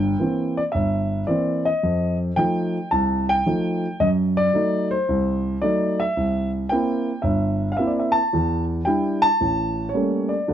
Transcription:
Already playing: G1 G2 G5
0.20 E3 A#3 C4
0.57 D5
0.72 G1 E5
1.27 E3 A#3 C4 D5
1.65 D#5
1.83 F2
2.36 F3 A3 D#4 G5
2.91 C2 A5
3.29 G5
3.46 F3 A3 D#4
4.00 F#2 D#5
4.37 D5
4.54 F#3 A3 D#4
4.91 C5
5.09 C2
5.62 F#3 A3 D#4 D5
6.00 E5
6.17 C2
6.69 A#3 C4 E4 G5
7.22 G1 E5
7.72 F5
7.77 A#3 C4 E4 E5
7.87 D5
7.99 E5
8.12 A5
8.33 E2
8.85 G3 D4 E4 G5
9.22 A5
9.41 A1
9.89 C#5
9.94 G3 A3 A#3 C#4
10.29 D5
10.48 D2 D3

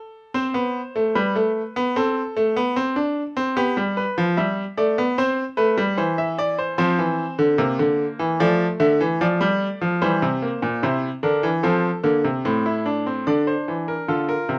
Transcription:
Already playing: A4
0.34 C4 C5
0.54 B3
0.95 A3
1.15 G3 B4
1.35 A3
1.76 B3
1.96 C4 A4
2.37 A3
2.57 B3
2.76 C4
2.96 D4
3.36 C4
3.56 B3 G4
3.77 G3
3.97 B4
4.18 F3
4.37 G3 E5
4.77 A3 D5
4.98 B3
5.18 C4 C5
5.57 A3 B4
5.78 G3
5.98 E3 C5
6.18 E5
6.39 D5
6.58 C5
6.78 F3 C4 C5
6.99 E3
7.39 D3
7.58 C3 A#3
7.79 D3
8.19 E3
8.40 F3 A3 D5
8.80 D3 E5
9.01 E3
9.21 F3 D5
9.41 G3
9.81 F3
10.02 E3 G3 C5
10.22 C3
10.42 A#3
10.62 A#2
10.83 C3 E4 C5
11.23 D3 D4 A#4
11.43 E3
11.63 F3 C4 A4
12.04 D3 A#3
12.24 C3
12.45 A2 C4
12.66 E4
12.86 D4
13.06 C4
13.27 D3 D4 D5
13.47 C5
13.68 E3
13.88 A#4
14.09 D3 F4 A4
14.29 A#4
14.49 C3

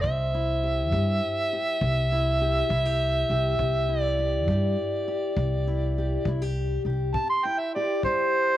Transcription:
Already playing: C4 C5
0.02 C2 C3 E5, kick
0.34 E4
0.63 G4
0.92 G2 G3 G4, kick
1.53 G4
1.81 C2 C3, kick
2.12 E4
2.41 G4
2.69 C2 G3 E4, kick
2.85 G4
3.30 C2 G4
3.59 C2 C3, kick
3.89 E4
4.01 D5
4.19 G4
4.48 G2 G3 G4, kick
5.08 G4
5.37 C2 C3, kick
5.67 E4
5.98 G4
6.25 C2 G3 E4, kick
6.42 G4
6.85 C2 G4
7.14 C3 A5, kick
7.30 C6
7.45 E4 G5
7.59 E5
7.75 G4 D5
8.03 G3 G4 C5, kick

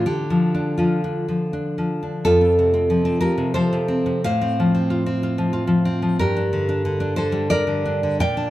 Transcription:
0.06 D3 G4
0.30 F3
0.54 D4
0.77 F3 F4
1.04 D4
1.28 F3
1.53 D4
1.78 F3
2.03 D4
2.25 F2 F4 A4
2.41 C4
2.59 C3
2.74 C4
2.90 F3
3.05 C4
3.21 F3 G4 A#4
3.38 C3
3.54 F3 A4 C5
3.73 C3
3.88 C4
4.06 C3
4.24 A2 C5 F5
4.41 C4
4.60 F3
4.75 C4
4.90 F4
5.06 C4
5.23 F4
5.38 F3
5.53 F4
5.67 F3
5.85 C4
6.02 F3
6.19 G2 G4 A#4
6.37 D4
6.53 D3
6.69 D4
6.85 D3
7.00 D4
7.16 D3 A4 C5
7.32 G3
7.50 D4 A#4 D5
7.67 D3
7.85 D4
8.03 D3
8.20 A#2 D5 G5
8.37 D4

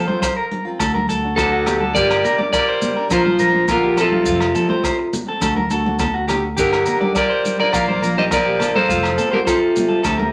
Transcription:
Already playing: F3 A4 C5
0.08 A3 C4 F4 C5, high conga
0.22 C5, kick, cross-stick, low agogo, maracas
0.36 A#4
0.51 closed hi-hat, high conga
0.65 C4 F4, muted steel-string acoustic guitar stroke
0.79 D2 A3 F#4 A4, muted steel-string acoustic guitar stroke, kick, cross-stick, low agogo, maracas
0.95 A#4, high conga
1.08 D2 A3 D4 F#4 A4, closed hi-hat, maracas
1.22 D4 F#4
1.36 F#4 A4, kick, cross-stick, low conga, low agogo, maracas
1.41 D3
1.52 F#4
1.64 A3 D4 F#4 G4, cross-stick, closed hi-hat, low conga, low agogo, maracas
1.81 A4, high conga
1.95 G1 G3 A#3 D4 G4 A#4 D5, kick, maracas
2.10 cross-stick, low agogo
2.23 A#3 D4 G4 A#4, closed hi-hat, low conga, maracas
2.38 D4 D5, high conga
2.53 G3 A#4 D5, kick, cross-stick, low agogo, maracas
2.69 C5
2.82 closed hi-hat, high conga, low conga, maracas
2.95 D4 G4 A#4
3.08 A#1 F3 A#3 D4 F4 A#4, kick, cross-stick, low agogo, maracas
3.13 F3 C5
3.25 C5, high conga
3.37 A#1 F3 A#3 D4 A#4, closed hi-hat, maracas
3.52 A#3 D4, high conga
3.68 D3 F4 A#4, kick, cross-stick, low conga, low agogo, maracas
3.83 G4
3.94 F3 A#3 D4 A4, cross-stick, closed hi-hat, low agogo, maracas
4.00 C3 F4 A4
4.12 F4, high conga
4.25 F1 F3 A3 C4 F4, kick, maracas
4.40 cross-stick, low agogo
4.54 F3 A3 C4 A4, closed hi-hat, low conga, maracas
4.68 A3 C4 C5, high conga
4.84 C5, kick, cross-stick, low agogo, maracas
4.99 muted clean electric guitar stroke
5.13 closed hi-hat, high conga, low conga, maracas
5.26 A3 C4 A4
5.40 D2 A3 D4 F#4 A4, kick, cross-stick, low agogo, maracas
5.56 A#4, high conga
5.69 D2 A3 D4 F#4 A4, closed hi-hat, maracas
5.84 D4 F#4, high conga
5.99 A4, kick, cross-stick, low conga, low agogo, maracas
6.14 F#4
6.27 A3 D4 F#4 G4, cross-stick, closed hi-hat, low conga, low agogo, maracas
6.57 G1 D3 A#3 D4 G4 A#4, kick, maracas
6.72 cross-stick, low agogo
6.85 A#3 D4 A#4, closed hi-hat, low conga, maracas
6.90 G4
7.00 D4 G4 D5, high conga
7.15 G3 A#4 D5, kick, cross-stick, low agogo, maracas
7.30 C5
7.44 closed hi-hat, high conga, maracas
7.59 F3 D4 G4 A#4 D5
7.72 A#1 A#3 F4 A#4 D5 F5, muted steel-string acoustic guitar stroke, kick, cross-stick, low agogo, maracas
7.88 C5, high conga
8.00 A#1 F3 A#3 D4 F4 A#4, closed hi-hat, maracas
8.16 G3 A#3 D4 F4 C5 D#5, high conga
8.31 F3 A#4 D5, kick, cross-stick, low conga, low agogo, maracas
8.45 G4
8.59 F3 A#3 D4 F4 A4, cross-stick, closed hi-hat, low conga, low agogo, maracas
8.74 F3 A4 A#4 C5, high conga
8.87 F1 A3 C4 F4, kick, maracas
9.03 cross-stick, low agogo
9.17 A3 C4 F4 A4, closed hi-hat, low conga, maracas
9.31 D3 C4 F4 G4 A#4 C5, high conga
9.45 C3 F4 A4 C5, kick, cross-stick, low agogo, maracas
9.60 muted clean electric guitar stroke
9.76 closed hi-hat, high conga, low conga, maracas
9.89 F4 A4
9.93 C4
10.03 D2 A3 D4 F#4 A4, kick, cross-stick, low agogo, maracas
10.18 A#4, high conga

